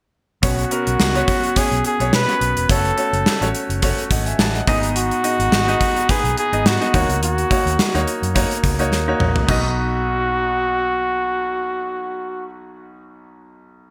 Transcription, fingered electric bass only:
0, 0, Header, 1, 2, 480
1, 0, Start_track
1, 0, Key_signature, 5, "major"
1, 0, Tempo, 566038
1, 364, Time_signature, 4, 2, 24, 8
1, 11791, End_track
2, 0, Start_track
2, 0, Title_t, "Fingered electric bass"
2, 0, Program_c, 0, 33
2, 364, Note_on_c, 0, 35, 91
2, 544, Note_off_c, 0, 35, 0
2, 739, Note_on_c, 0, 35, 89
2, 819, Note_off_c, 0, 35, 0
2, 848, Note_on_c, 0, 37, 85
2, 1026, Note_off_c, 0, 37, 0
2, 1456, Note_on_c, 0, 35, 73
2, 1537, Note_off_c, 0, 35, 0
2, 1696, Note_on_c, 0, 35, 83
2, 1777, Note_off_c, 0, 35, 0
2, 1802, Note_on_c, 0, 47, 88
2, 1902, Note_off_c, 0, 47, 0
2, 2042, Note_on_c, 0, 35, 76
2, 2142, Note_off_c, 0, 35, 0
2, 2175, Note_on_c, 0, 28, 76
2, 2256, Note_off_c, 0, 28, 0
2, 2285, Note_on_c, 0, 30, 92
2, 2464, Note_off_c, 0, 30, 0
2, 2653, Note_on_c, 0, 30, 85
2, 2735, Note_off_c, 0, 30, 0
2, 2893, Note_on_c, 0, 33, 83
2, 2975, Note_off_c, 0, 33, 0
2, 3132, Note_on_c, 0, 30, 83
2, 3313, Note_off_c, 0, 30, 0
2, 3482, Note_on_c, 0, 32, 75
2, 3662, Note_off_c, 0, 32, 0
2, 3719, Note_on_c, 0, 33, 80
2, 3901, Note_off_c, 0, 33, 0
2, 3962, Note_on_c, 0, 32, 89
2, 4323, Note_off_c, 0, 32, 0
2, 4572, Note_on_c, 0, 32, 89
2, 4655, Note_off_c, 0, 32, 0
2, 4679, Note_on_c, 0, 32, 88
2, 4861, Note_off_c, 0, 32, 0
2, 5290, Note_on_c, 0, 35, 79
2, 5373, Note_off_c, 0, 35, 0
2, 5532, Note_on_c, 0, 32, 78
2, 5614, Note_off_c, 0, 32, 0
2, 5638, Note_on_c, 0, 44, 95
2, 5739, Note_off_c, 0, 44, 0
2, 5885, Note_on_c, 0, 39, 90
2, 5984, Note_off_c, 0, 39, 0
2, 6010, Note_on_c, 0, 37, 91
2, 6120, Note_off_c, 0, 37, 0
2, 6120, Note_on_c, 0, 39, 96
2, 6301, Note_off_c, 0, 39, 0
2, 6492, Note_on_c, 0, 39, 91
2, 6574, Note_off_c, 0, 39, 0
2, 6736, Note_on_c, 0, 39, 84
2, 6817, Note_off_c, 0, 39, 0
2, 6974, Note_on_c, 0, 42, 84
2, 7154, Note_off_c, 0, 42, 0
2, 7323, Note_on_c, 0, 37, 80
2, 7561, Note_off_c, 0, 37, 0
2, 7561, Note_on_c, 0, 39, 89
2, 7742, Note_off_c, 0, 39, 0
2, 7798, Note_on_c, 0, 34, 87
2, 7980, Note_off_c, 0, 34, 0
2, 8043, Note_on_c, 0, 35, 96
2, 10561, Note_off_c, 0, 35, 0
2, 11791, End_track
0, 0, End_of_file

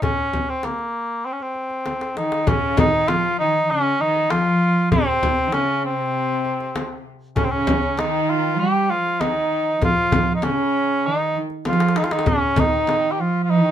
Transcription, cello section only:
0, 0, Header, 1, 2, 480
1, 0, Start_track
1, 0, Tempo, 612245
1, 19, Time_signature, 4, 2, 24, 8
1, 10751, End_track
2, 0, Start_track
2, 0, Title_t, "Cello section"
2, 0, Program_c, 0, 48
2, 1699, Note_on_c, 0, 51, 67
2, 1922, Note_off_c, 0, 51, 0
2, 1938, Note_on_c, 0, 49, 77
2, 2172, Note_on_c, 0, 51, 76
2, 2178, Note_off_c, 0, 49, 0
2, 2410, Note_on_c, 0, 53, 86
2, 2415, Note_off_c, 0, 51, 0
2, 2654, Note_off_c, 0, 53, 0
2, 2662, Note_on_c, 0, 51, 77
2, 2840, Note_off_c, 0, 51, 0
2, 2850, Note_on_c, 0, 51, 55
2, 2901, Note_off_c, 0, 51, 0
2, 2907, Note_on_c, 0, 49, 77
2, 3143, Note_off_c, 0, 49, 0
2, 3148, Note_on_c, 0, 51, 84
2, 3366, Note_off_c, 0, 51, 0
2, 3383, Note_on_c, 0, 53, 85
2, 3860, Note_off_c, 0, 53, 0
2, 3871, Note_on_c, 0, 48, 75
2, 4289, Note_off_c, 0, 48, 0
2, 4290, Note_on_c, 0, 51, 57
2, 4341, Note_off_c, 0, 51, 0
2, 4349, Note_on_c, 0, 49, 81
2, 4581, Note_on_c, 0, 48, 74
2, 4583, Note_off_c, 0, 49, 0
2, 5539, Note_off_c, 0, 48, 0
2, 5778, Note_on_c, 0, 49, 69
2, 5880, Note_off_c, 0, 49, 0
2, 5892, Note_on_c, 0, 49, 77
2, 6234, Note_off_c, 0, 49, 0
2, 6266, Note_on_c, 0, 51, 91
2, 6733, Note_on_c, 0, 55, 85
2, 6741, Note_off_c, 0, 51, 0
2, 6974, Note_off_c, 0, 55, 0
2, 6985, Note_on_c, 0, 53, 84
2, 7220, Note_off_c, 0, 53, 0
2, 7223, Note_on_c, 0, 51, 81
2, 7700, Note_off_c, 0, 51, 0
2, 7702, Note_on_c, 0, 53, 78
2, 8147, Note_off_c, 0, 53, 0
2, 8182, Note_on_c, 0, 49, 80
2, 8659, Note_off_c, 0, 49, 0
2, 8666, Note_on_c, 0, 51, 75
2, 8929, Note_off_c, 0, 51, 0
2, 9142, Note_on_c, 0, 53, 77
2, 9362, Note_off_c, 0, 53, 0
2, 9380, Note_on_c, 0, 51, 67
2, 9488, Note_off_c, 0, 51, 0
2, 9501, Note_on_c, 0, 51, 67
2, 9615, Note_off_c, 0, 51, 0
2, 9618, Note_on_c, 0, 49, 65
2, 9857, Note_off_c, 0, 49, 0
2, 9860, Note_on_c, 0, 51, 75
2, 10338, Note_off_c, 0, 51, 0
2, 10342, Note_on_c, 0, 53, 73
2, 10579, Note_off_c, 0, 53, 0
2, 10582, Note_on_c, 0, 51, 74
2, 10751, Note_off_c, 0, 51, 0
2, 10751, End_track
0, 0, End_of_file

